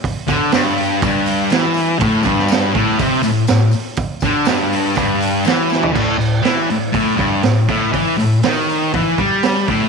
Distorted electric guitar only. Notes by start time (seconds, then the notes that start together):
0.28 D3
0.53 G2
1.03 G2
1.52 E3
1.99 A2
2.22 G2
2.74 A2
3.00 C3
3.23 A2
3.50 A2
4.24 D3
4.47 G2
4.97 G2
5.45 E3
5.93 A2
6.18 A2
6.42 E3
6.71 A2
6.92 A2
7.16 G2
7.43 A2
7.69 A2
7.93 E3
8.18 A2
8.44 D#3
8.94 E3
9.18 G3
9.67 A2